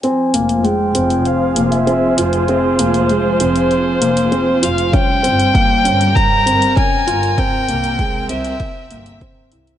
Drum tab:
HH |x-xxx-xxx-xxx-xx|x-xxx-xxx-xxx-xx|x-xxx-xxx-xxx-xx|x-xxx-xxx-xxx-xx|
BD |----------------|----------------|o---o---o---o---|o---o---o---o---|